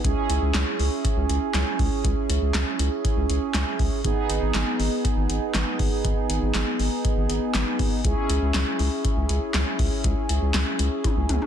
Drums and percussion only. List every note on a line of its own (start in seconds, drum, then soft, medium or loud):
0.04 kick loud
0.04 closed hi-hat medium
0.30 closed hi-hat medium
0.54 snare loud
0.54 clap medium
0.54 closed hi-hat medium
0.80 open hi-hat medium
1.05 kick loud
1.05 closed hi-hat medium
1.29 closed hi-hat medium
1.54 snare loud
1.54 clap medium
1.54 closed hi-hat medium
1.79 kick loud
1.79 open hi-hat medium
2.04 kick loud
2.04 closed hi-hat medium
2.30 closed hi-hat medium
2.54 snare loud
2.54 clap medium
2.54 closed hi-hat medium
2.79 closed hi-hat medium
3.05 kick loud
3.05 closed hi-hat medium
3.30 closed hi-hat medium
3.54 snare loud
3.54 clap loud
3.54 closed hi-hat medium
3.79 kick loud
3.79 open hi-hat medium
4.04 kick loud
4.04 closed hi-hat medium
4.30 closed hi-hat medium
4.54 snare loud
4.54 clap medium
4.54 closed hi-hat medium
4.80 open hi-hat medium
5.05 kick loud
5.05 closed hi-hat medium
5.30 closed hi-hat medium
5.54 snare loud
5.54 clap medium
5.54 closed hi-hat medium
5.79 kick loud
5.79 open hi-hat medium
6.05 kick loud
6.05 closed hi-hat medium
6.30 closed hi-hat medium
6.54 snare loud
6.54 clap medium
6.54 closed hi-hat medium
6.79 open hi-hat medium
7.05 kick loud
7.05 closed hi-hat medium
7.30 closed hi-hat medium
7.54 snare loud
7.54 clap loud
7.54 closed hi-hat medium
7.79 kick loud
7.79 open hi-hat medium
8.04 kick loud
8.04 closed hi-hat medium
8.30 closed hi-hat medium
8.54 snare loud
8.54 clap medium
8.54 closed hi-hat medium
8.79 open hi-hat medium
9.05 kick loud
9.05 closed hi-hat medium
9.29 closed hi-hat medium
9.54 snare loud
9.54 clap medium
9.54 closed hi-hat medium
9.79 kick loud
9.79 open hi-hat medium
10.04 kick loud
10.04 closed hi-hat medium
10.29 closed hi-hat medium
10.54 snare loud
10.54 clap medium
10.54 closed hi-hat medium
10.79 closed hi-hat medium
11.04 kick loud
11.04 closed hi-hat medium
11.04 high tom medium
11.29 closed hi-hat medium
11.29 mid tom medium
11.42 mid tom medium